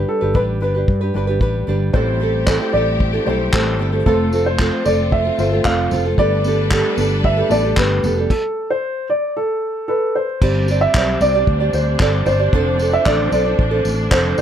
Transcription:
Already playing: reed electric piano G3 D4 B4, nylon-string guitar D4 G4 B4
0.09 upright piano A4
0.21 fretless electric bass G1, nylon-string guitar D4 G4 B4
0.34 fretless electric bass A1, nylon-string guitar G3 D4 G4 B4, upright piano B4, kick
0.61 fretless electric bass G1, nylon-string guitar G3 D4 G4 B4, upright piano B4
0.74 nylon-string guitar D4 G4 B4
0.88 fretless electric bass G2, kick
1.01 nylon-string guitar D4 G4 B4
1.14 fretless electric bass G1, nylon-string guitar G3 D4 G4 B4, reed electric piano G3 D4 B4
1.27 nylon-string guitar D4 G4 B4
1.40 fretless electric bass A1, nylon-string guitar G3 D4 G4 B4, kick
1.67 fretless electric bass G1, nylon-string guitar G3 D4 G4 B4
1.93 fretless electric bass A1, nylon-string guitar A2 E3 G3 C4 E4 A4, reed electric piano A3 G4 C5, string section A3 C4 G4, upright piano C5, kick
2.20 nylon-string guitar G3 C4 E4 A4
2.46 nylon-string guitar A2 E3 G3 C4 E4 A4, upright piano C5, kick, clap
2.60 nylon-string guitar G3 C4 E4 A4
2.73 fretless electric bass A1, nylon-string guitar G3 C4 E4 A4, upright piano D5
3.00 kick
3.13 nylon-string guitar G3 C4 E4 A4
3.26 fretless electric bass B1, nylon-string guitar G3 C4 E4 A4, reed electric piano A3 G4 C5, upright piano C5
3.53 fretless electric bass A1, nylon-string guitar A2 E3 G3 C4 E4 A4, upright piano A4, kick, clap
3.79 fretless electric bass G1, nylon-string guitar G3 C4 E4 A4
3.92 nylon-string guitar G3 C4 E4 A4
4.05 fretless electric bass F1, nylon-string guitar F3 A3 C4 F4 A4, reed electric piano A3 F4 B4, string section C4 F4, upright piano A4, kick
4.14 reed electric piano C5
4.32 nylon-string guitar A3 C4 F4 A4, tambourine
4.46 upright piano C5
4.59 nylon-string guitar F3 A3 C4 F4 A4, kick, clap
4.85 fretless electric bass F1, nylon-string guitar A3 C4 F4 A4, upright piano D5, tambourine
5.12 upright piano E5, kick
5.25 nylon-string guitar C4 F4 A4
5.38 fretless electric bass G1, reed electric piano A3 F4 C5, nylon-string guitar A3 C4 F4 A4, tambourine
5.52 nylon-string guitar C4 F4 A4
5.65 fretless electric bass F1, nylon-string guitar F3 A3 C4 F4 A4, upright piano F5, kick, clap
5.91 fretless electric bass F1, nylon-string guitar A3 C4 F4 A4, tambourine
6.05 nylon-string guitar C4 F4 A4
6.18 fretless electric bass G1, nylon-string guitar G3 B3 D4 G4 A4, string section G3 D4 A4 B4, reed electric piano A3 G4 B4, upright piano D5, kick
6.44 nylon-string guitar B3 D4 G4 A4, tambourine
6.71 nylon-string guitar G3 B3 D4 G4 A4, kick, clap
6.97 fretless electric bass G1, nylon-string guitar B3 D4 G4 A4, tambourine
7.24 upright piano E5, kick
7.37 nylon-string guitar D4 G4 A4
7.50 fretless electric bass A1, reed electric piano A3 G4 A4, nylon-string guitar B3 D4 G4 A4, upright piano D5, tambourine
7.63 nylon-string guitar D4 G4 A4
7.77 fretless electric bass G1, nylon-string guitar G3 B3 D4 G4 A4, upright piano B4, kick, clap
8.03 fretless electric bass F1, nylon-string guitar B3 D4 G4 A4, tambourine
8.17 nylon-string guitar D4 G4 A4
8.30 upright piano A4, kick, crash
8.70 upright piano C5
9.10 upright piano D5
9.37 upright piano A4
9.88 upright piano A4 B4
10.15 upright piano C5
10.42 fretless electric bass G1, nylon-string guitar G3 C4 G4 D5, string section G3 C4 D4, kick, crash
10.68 nylon-string guitar G3 C4 G4 D5, tambourine
10.81 upright piano E5
10.95 fretless electric bass B1, nylon-string guitar G3 C4 G4 D5, kick, clap
11.21 fretless electric bass C2, nylon-string guitar G3 C4 G4 D5, upright piano D5, tambourine
11.34 nylon-string guitar C4 G4 D5
11.47 fretless electric bass D2, kick
11.60 nylon-string guitar C4 G4 D5
11.73 fretless electric bass D2, upright piano C5, tambourine
12.00 fretless electric bass G1, nylon-string guitar G3 C4 G4 D5, upright piano A4, kick, clap
12.26 fretless electric bass G1, nylon-string guitar G3 C4 G4 D5, upright piano C5, tambourine
12.39 nylon-string guitar C4 G4 D5
12.53 fretless electric bass F1, nylon-string guitar D3 F3 C4 D4 A4 C5, string section F3, kick
12.79 nylon-string guitar C4 D4 A4 C5, tambourine
12.93 upright piano E5
13.06 fretless electric bass A1, nylon-string guitar D3 F3 C4 D4 A4 C5, upright piano D5, kick, clap
13.32 fretless electric bass B1, nylon-string guitar C4 D4 A4 C5, upright piano D5, tambourine
13.45 nylon-string guitar C4 D4 A4 C5
13.59 fretless electric bass A1, kick
13.71 nylon-string guitar C4 D4 A4 C5
13.85 fretless electric bass A1, tambourine
14.11 fretless electric bass F1, nylon-string guitar D3 F3 C4 D4 A4 C5, upright piano C5, kick, clap
14.38 fretless electric bass F1, nylon-string guitar D4, upright piano C5, tambourine

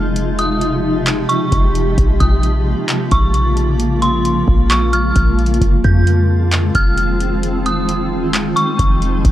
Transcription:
Already playing: 808-style bass F1, ambient pad C3 F3 G#3 D#4 F4
0.16 ambient pad G4, closed hi-hat
0.39 synth bell D#6, closed hi-hat
0.61 closed hi-hat
1.07 clap, closed hi-hat
1.29 synth bell C#6, closed hi-hat
1.52 808-style bass F1, kick, closed hi-hat
1.75 closed hi-hat
1.98 808-style bass A#1, ambient pad C#3 G#3 A#3 F4, kick, closed hi-hat
2.20 808-style bass A#1, synth bell D#6, kick, closed hi-hat
2.43 closed hi-hat
2.89 clap, closed hi-hat
3.11 808-style bass A#1, synth bell C#6, kick, closed hi-hat
3.34 closed hi-hat
3.57 closed hi-hat
3.80 closed hi-hat
4.02 synth bell C6, closed hi-hat
4.25 closed hi-hat
4.48 808-style bass A#1, kick
4.70 synth bell C#6, clap, closed hi-hat
4.93 synth bell F6, closed hi-hat
5.16 808-style bass A#1, kick, closed hi-hat
5.39 closed hi-hat
5.46 closed hi-hat
5.54 closed hi-hat
5.61 808-style bass F1, ambient pad D#3 C4 F4, kick, closed hi-hat
5.84 808-style bass F2, synth bell G6, kick, closed hi-hat
6.07 closed hi-hat
6.52 clap, closed hi-hat
6.75 808-style bass F1, synth bell F6, kick, closed hi-hat
6.98 closed hi-hat
7.21 closed hi-hat
7.43 ambient pad D#4, closed hi-hat
7.66 synth bell D#6, closed hi-hat
7.89 closed hi-hat
8.34 clap, closed hi-hat
8.56 synth bell C#6, closed hi-hat
8.79 808-style bass F1, kick, closed hi-hat
9.02 closed hi-hat
9.25 808-style bass A#1, kick, closed hi-hat

